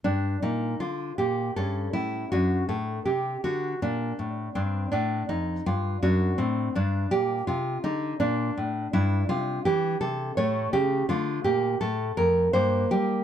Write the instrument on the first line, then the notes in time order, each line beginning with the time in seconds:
nylon-string guitar
0.04 G2 D4
0.42 A#2 D#4
0.80 D3 F4
1.18 A#2 G4
1.56 G2 C#4 A4
1.93 A2 E4
2.32 F#2 D4 F#4
2.69 A2 A4
3.05 C3 G4
3.44 D3 F#4
3.82 A#2 D4
4.19 A2
4.55 G2 C4 D4
4.92 A2 D4
5.29 F2 D#4
5.66 G2 F4
6.02 F#2 D4 F#4
6.38 A2 C4
6.75 G2 D4
7.11 A#2 G4
7.47 C3 F4
7.84 D3 D#4
8.20 A#2 D4
8.58 A2
8.93 G2 D4 E4
9.29 C3 F4
9.65 E3 G4
10.01 C3 A4
10.37 A2 A3 C#5
10.73 C#3 G4
11.09 D3 A3 F4
11.44 A#2 G4
11.81 A2 A4
12.17 F2 A#4
12.53 G2 A#3 C5
12.91 G3 G4